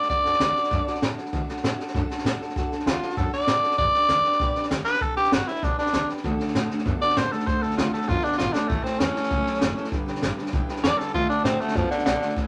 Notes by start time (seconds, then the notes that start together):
0.02 snare
0.08 F#2 D3 A3 D4 F#4 A4 D5, kick, snare
0.24 F#2 D4 F#4 A4, snare
0.33 snare
0.39 D2 A3 D4 F#4 A4, snare, hi-hat pedal
0.56 D4 F#4 A4, snare
0.63 snare
0.70 F#2 D3 A3 D4 F#4 A4, kick, snare
0.86 D4 F#4 A4, muted upright bass stroke, snare
0.95 snare
1.01 A2 A3 D4 F#4 A4, snare, hi-hat pedal
1.17 D4 F#4 A4, muted upright bass stroke, snare
1.25 snare
1.33 D2 D3 A3 D4 F#4 A4, kick, snare
1.48 D4 F#4 A4, snare
1.56 snare
1.63 A2 A3 D4 F#4 A4, snare, hi-hat pedal
1.79 D4 F#4 A4, muted upright bass stroke, snare
1.87 snare
1.94 F#2 D3 A3 D4 F#4 A4, kick, snare
2.09 D4 F#4 A4, muted upright bass stroke, snare
2.18 snare
2.24 A2 A3 D4 F#4 A4, snare, hi-hat pedal
2.40 D4 F#4 A4, muted upright bass stroke, snare
2.49 snare
2.55 F#2 D3 A3 D4 F#4 A4, kick, snare
2.71 D4 F#4 A4, snare
2.79 snare
2.85 D2 A3 D4 F4 F#4, snare, hi-hat pedal
3.01 D4 F#4 A4, muted upright bass stroke, snare
3.09 snare
3.16 F#2 D3 A3 D4 F#4 A4, kick, snare
3.31 D4 F#4 A4 D5, snare
3.40 snare
3.47 A2 A3 D4 F#4 A4, snare, hi-hat pedal
3.62 D4 F#4 A4, snare
3.71 snare
3.78 G1 G3 D4 G4 B4 D5, kick, snare
3.94 D4 G4, snare
4.01 snare
4.08 D2 G3, snare, hi-hat pedal
4.24 D4 G4 B4, muted upright bass stroke, snare
4.32 snare
4.39 B1 G3 D4 G4 B4, kick, snare
4.54 D4 G4 B4, muted upright bass stroke, snare
4.63 snare
4.70 D2 G3 D4 G4 B4, snare, hi-hat pedal
4.84 D4 G4 B4, muted upright bass stroke, snare
4.93 snare
5.00 B1 G3 D4 G4 A4 B4, kick, snare
5.16 B1 D4 G4 B4, snare
5.24 snare
5.31 G1 G3 D4 F#4 G4, snare, hi-hat pedal
5.46 D4 E4 G4 B4, muted upright bass stroke, snare
5.55 snare
5.62 B1 G3 D4 G4 B4, kick, snare
5.77 D4 G4 B4, muted upright bass stroke, snare
5.86 snare
5.92 D2 G3 D4 G4, snare, hi-hat pedal
6.08 D4 G4 B4, muted upright bass stroke, snare
6.17 snare
6.23 D2 D3 A3 D4 F#4 A4, kick, snare
6.39 D4 F#4 A4, snare
6.47 snare
6.54 A2 D3 A3 D4 F#4 A4, snare, hi-hat pedal
6.69 D3 A3 D4 F#4 A4, muted upright bass stroke, snare
6.78 snare
6.85 F#2 D3 A3 B3 D4 F#4 A4, kick, snare
7.01 D4 F#4 A4 D5, snare
7.09 snare
7.15 A2 D3 A3 B3 D4 F#4 A4 C5, snare, hi-hat pedal
7.31 D3 A3 D4 F#4 A4, snare
7.39 snare
7.46 F#2 D3 A3 D4 F#4 A4 C5, kick, snare
7.62 F#2 D4 F#4 A4, snare
7.70 snare
7.77 D2 D3 A3 D4 F4 F#4 A4, snare, hi-hat pedal
7.92 D3 A3 F#4 A4, muted upright bass stroke, snare
7.96 D4
8.01 snare
8.07 F#2 D3 A3 B3 D4 F4 F#4, kick, snare
8.11 A4
8.24 D4 F#4 A4, muted upright bass stroke, snare
8.32 snare
8.38 G#1 D3 A3 B3 D4 F4 F#4, snare, hi-hat pedal
8.42 A4
8.53 D3 A3 D4 F#4 A4, muted upright bass stroke, snare
8.57 D4
8.68 A1 A2 E3 A3 C#4 E4, kick, snare
8.72 A4
8.83 C4 C#4 E4 A4, snare
8.88 A3
8.93 snare
8.99 E2 A2 E3 A3 C#4 E4 A4, snare, hi-hat pedal
9.15 A2 E3 A3 C#4 E4 A4, snare
9.23 snare
9.30 C#2 A2 E3 F#3 A3 C#4 E4 A4, kick, snare
9.46 A3 C#4 E4 A4, snare
9.54 snare
9.61 F#1 A2 F#3 A3 C#4 E4 A4, snare, hi-hat pedal
9.76 A2 E3 A3 C#4 E4 A4, snare
9.84 snare
9.91 G1 G2 D3 G3 D4 G4 B4, kick, snare
10.06 B1 D4 G4 B4, snare
10.15 snare
10.21 G1 G2 D3 G3 D4 G4 B4, snare, hi-hat pedal
10.36 G2 D3 D4 G4 B4, muted upright bass stroke, snare
10.46 snare
10.51 B1 G2 E3 G3 D4 G4 B4, kick, snare
10.68 D4 G4 B4, snare
10.76 snare
10.83 E2 G2 E3 G3 D4 D5, snare, hi-hat pedal
10.99 G2 D3 D4 G4 A4 B4, muted upright bass stroke, snare
11.07 snare
11.14 D2 D3 A3 D4 F4 F#4 A4, kick, snare
11.29 D4 F#4 A4, muted upright bass stroke, snare
11.38 snare
11.44 A2 D3 A3 C4 D4 F#4 A4, snare, hi-hat pedal
11.59 D3 A3 D4 F#4 A4, snare
11.68 snare
11.75 F#2 D3 F3 A3 B3 D4 F#4 A4, kick, snare
11.90 D3 D4 F#4 A4, muted upright bass stroke, snare
11.98 snare
12.05 B1 D3 A3 B3 D4 F#4 A4, snare, hi-hat pedal
12.21 D3 A3 D4 F#4 A4, snare
12.29 snare
12.36 A1 A2 E3 A3 C#4 E4 A4, kick, snare